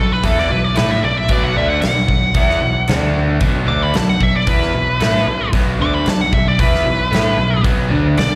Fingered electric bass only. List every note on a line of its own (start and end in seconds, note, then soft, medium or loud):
0.00 0.22 B1 medium
0.24 0.49 E2 medium
0.51 0.75 B1 medium
0.78 1.02 A2 medium
1.04 1.28 B1 medium
1.29 1.54 B1 medium
1.56 1.81 D2 medium
1.82 2.07 B1 medium
2.09 2.34 B1 medium
2.35 2.60 E2 medium
2.62 2.87 B1 medium
2.89 3.38 D2 medium
3.41 3.66 B1 medium
3.68 3.93 D2 medium
3.94 4.19 B1 medium
4.21 4.46 B1 medium
4.47 4.72 E2 medium
4.74 4.99 B1 medium
5.01 5.25 A2 medium
5.27 5.51 B1 medium
5.53 5.78 B1 medium
5.79 6.04 D2 medium
6.06 6.30 B1 medium
6.33 6.57 B1 medium
6.59 6.84 E2 medium
6.85 7.10 B1 medium
7.12 7.36 A2 medium
7.37 7.62 B1 medium
7.65 7.89 B1 medium
7.90 8.15 D2 medium
8.17 8.35 B1 medium